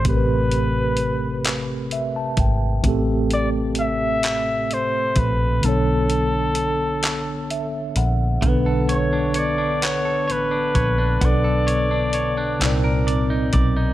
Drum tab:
HH |xxxxxx|xxxxxx|xxxxxx|xxxxxx|
CP |---x--|---x--|---x--|---x--|
BD |o----o|o----o|------|o----o|

HH |xxxxxx|
CP |---x--|
BD |o----o|